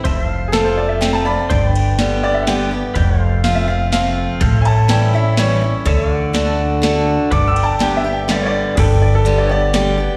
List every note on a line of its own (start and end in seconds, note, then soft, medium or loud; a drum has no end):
0.04 1.35 F1 medium
0.04 0.97 F2 medium
0.04 1.48 C5 medium
0.04 0.25 E5 medium
0.04 1.50 A5 medium
0.04 kick medium
0.04 ride medium
0.25 1.49 F5 medium
0.48 0.51 G#4 medium
0.52 0.99 F3 medium
0.52 0.99 A3 medium
0.52 1.00 C4 medium
0.52 1.00 F4 medium
0.52 0.64 A4 loud
0.52 snare loud
0.52 ride medium
0.65 0.76 C5 medium
0.77 0.89 D5 medium
0.89 1.00 E5 medium
1.00 1.25 F3 medium
1.00 1.25 A3 loud
1.00 1.25 C4 medium
1.00 1.24 F4 loud
1.00 1.12 G5 medium
1.00 snare medium
1.00 ride medium
1.13 1.25 A5 medium
1.25 1.50 C4 soft
1.25 1.49 F4 medium
1.25 1.71 D5 medium
1.25 1.73 B5 loud
1.50 2.81 G1 medium
1.50 2.42 G2 medium
1.50 1.70 C5 medium
1.50 2.95 D5 medium
1.50 2.95 G5 medium
1.50 kick loud
1.50 ride medium
1.70 2.94 B4 medium
1.76 ride medium
1.98 2.45 D3 medium
1.98 2.45 G3 medium
1.98 2.46 B3 medium
1.98 2.46 G4 medium
1.98 snare medium
1.98 ride medium
2.23 2.35 D5 loud
2.34 2.46 E5 medium
2.43 2.70 D3 medium
2.43 2.46 F#5 medium
2.47 2.71 G3 medium
2.47 2.71 B3 medium
2.47 2.70 G4 loud
2.47 3.41 G5 loud
2.47 snare medium
2.47 ride medium
2.71 2.96 B3 soft
2.71 2.95 G4 medium
2.95 4.26 F1 medium
2.95 3.88 F2 medium
2.95 3.20 B4 medium
2.95 3.21 D5 medium
2.95 3.22 G5 medium
2.95 kick loud
2.95 ride medium
3.20 4.39 A4 medium
3.20 4.40 C5 medium
3.20 4.40 F5 medium
3.44 3.67 F3 medium
3.44 3.68 A3 medium
3.44 3.68 C4 medium
3.44 3.66 F4 loud
3.44 3.55 F5 medium
3.44 snare medium
3.44 ride medium
3.55 3.67 E5 medium
3.67 3.93 C4 soft
3.67 3.91 F4 soft
3.67 3.91 F5 medium
3.92 4.38 F3 medium
3.92 4.39 A3 medium
3.92 4.39 C4 loud
3.92 4.40 F4 loud
3.92 4.16 F5 medium
3.92 snare medium
3.92 ride medium
4.41 5.71 A1 medium
4.41 5.33 A2 loud
4.41 5.85 A4 medium
4.41 4.62 C5 medium
4.41 4.62 F5 medium
4.41 kick loud
4.41 ride medium
4.61 5.86 C#5 medium
4.61 5.86 E5 medium
4.61 4.65 G#5 medium
4.61 ride medium
4.65 4.89 A5 medium
4.88 5.12 E3 medium
4.88 5.13 G3 medium
4.88 5.13 C#4 medium
4.88 5.12 E4 medium
4.88 5.13 G5 medium
4.88 snare loud
4.88 ride medium
5.13 5.38 C#4 soft
5.13 5.37 E4 medium
5.13 5.38 E5 medium
5.37 5.61 E3 medium
5.37 5.61 G3 medium
5.37 5.62 C#4 medium
5.37 5.60 E4 loud
5.37 5.85 C#5 medium
5.37 snare medium
5.37 ride medium
5.61 5.86 C#4 soft
5.61 5.85 E4 medium
5.85 7.16 D2 medium
5.85 6.32 D3 loud
5.85 7.31 A4 medium
5.85 6.07 C#5 medium
5.85 6.14 E5 medium
5.85 kick loud
5.85 ride medium
6.07 7.31 D5 medium
6.14 7.32 F#5 medium
6.33 6.80 D3 medium
6.33 6.80 A3 medium
6.33 6.81 D4 medium
6.33 6.81 F#4 medium
6.33 snare medium
6.33 ride medium
6.82 7.29 D3 medium
6.82 7.29 A3 medium
6.82 7.30 D4 loud
6.82 7.30 F#4 medium
6.82 snare medium
6.82 ride medium
7.31 8.62 G1 medium
7.31 8.24 G2 medium
7.31 8.75 B4 medium
7.31 8.76 D5 medium
7.31 7.53 F#5 medium
7.31 7.48 D6 loud
7.31 kick loud
7.31 ride medium
7.47 7.63 E6 medium
7.53 8.76 G5 medium
7.53 ride medium
7.63 7.79 A5 medium
7.79 8.03 D3 medium
7.79 8.03 G3 medium
7.79 8.04 B3 medium
7.79 8.03 G4 medium
7.79 7.96 G5 loud
7.79 snare medium
7.79 ride medium
7.97 8.12 E5 medium
8.04 8.28 B3 soft
8.04 8.28 G4 medium
8.13 8.29 G5 medium
8.28 8.74 D3 medium
8.28 8.75 G3 loud
8.28 8.75 B3 loud
8.28 8.75 G4 loud
8.28 8.45 D5 medium
8.28 snare medium
8.28 ride medium
8.42 8.45 C#5 medium
8.46 8.77 D5 medium
8.75 10.07 G1 loud
8.75 9.69 G2 medium
8.75 8.78 G#4 medium
8.75 10.17 B4 medium
8.75 10.17 D5 medium
8.75 kick loud
8.75 closed hi-hat medium
8.75 crash medium
8.79 9.02 A4 medium
8.79 10.17 G5 medium
9.02 9.13 D5 medium
9.15 9.38 A4 medium
9.25 9.48 D3 medium
9.25 9.49 G3 medium
9.25 9.49 B3 medium
9.25 9.48 G4 medium
9.25 closed hi-hat medium
9.38 9.49 D5 medium
9.46 9.73 G4 medium
9.46 9.49 C#5 medium
9.51 9.74 B3 soft
9.51 10.17 D5 loud
9.73 9.97 D3 medium
9.73 9.97 G3 loud
9.73 9.98 B3 medium
9.73 9.96 G4 loud
9.73 snare medium
9.73 closed hi-hat medium
9.98 10.17 B3 soft
9.98 10.17 G4 soft